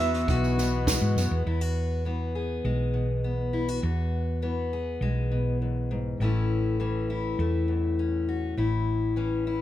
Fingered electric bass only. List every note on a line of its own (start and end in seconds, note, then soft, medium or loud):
0.00 0.24 E2 loud
0.28 0.98 B1 loud
1.01 1.15 G#2 medium
1.16 1.30 F#2 medium
1.31 1.45 E2 medium
1.46 2.60 E2 medium
2.64 3.79 B1 medium
3.83 4.98 E2 medium
5.01 6.16 B1 medium
6.20 7.35 A1 medium
7.39 8.53 E2 medium
8.57 9.62 A1 medium